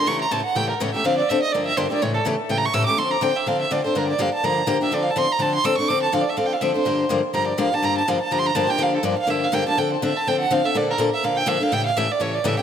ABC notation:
X:1
M:4/4
L:1/8
Q:"Swing" 1/4=247
K:Dm
V:1 name="Violin"
^c' b a ^f g B ^c e | f d e _e d =e c d | ^c A z2 (3g b ^c' e' d' | c' b g e f e d c |
B d f a b2 z e | (3d f a c' b a c' e' ^c' | d' a (3f d e (3f g f e c- | c2 z2 b d f a |
b a f a (3b c' b a g | f A d f e f g a | g c e a g ^f =f e | d B z e f g e f |
g f e d ^c d e z |]
V:2 name="Steel-string acoustic guitar"
[A,,^C,E,A,^CG] z [A,,C,E,A,CG] z [A,,C,E,A,CG] z [A,,C,E,A,CG] [E,A,CG] | [D,F,CDA] z [D,F,CDA] z [G,,D,F,B,DG] z [G,,D,F,B,DG] [F,B,DG] | [A,,^C,E,A,^CG] z [A,,C,E,A,CG] z [A,,C,E,A,CG] z [A,,C,E,A,CG] [E,A,CG] | [D,F,CDA] z [D,F,CDA] z [D,F,CDA] z [D,F,CDA] [CDA] |
[G,,D,F,B,DG] z [G,,D,F,B,DG] z [G,,D,F,B,DG] z [G,,D,F,B,DG] [F,B,DG] | [D,F,CDA] z [D,F,CDA] z [D,F,CDA] z [D,F,CDA] [CDA] | [D,F,CDA] z [D,F,CDA] z [D,F,CDA] z [D,F,CDA] [CDA] | [G,,D,F,B,DG] z [G,,D,F,B,DG] z [G,,D,F,B,DG] z [G,,D,F,B,DG] [F,B,DG] |
[G,,D,F,B,DG] z [G,,D,F,B,DG] z [G,,D,F,B,DG] z [G,,D,F,B,DG] [F,B,DG] | [G,,D,F,B,DG] z [G,,D,F,B,DG] z [G,,D,F,B,DG] z [G,,D,F,B,DG] [F,B,DG] | [D,F,CDA] z [D,F,CDA] z [D,F,CDA] z [D,F,CDA] [CDA] | [B,,D,F,B,DA] z [B,,D,F,B,DA] z [B,,D,F,B,DA] z [B,,D,F,B,DA] [F,B,DA] |
[A,,^C,E,A,^CG] z [A,,C,E,A,CG] z [A,,C,E,A,CG] z [A,,C,E,A,CG] [E,A,CG] |]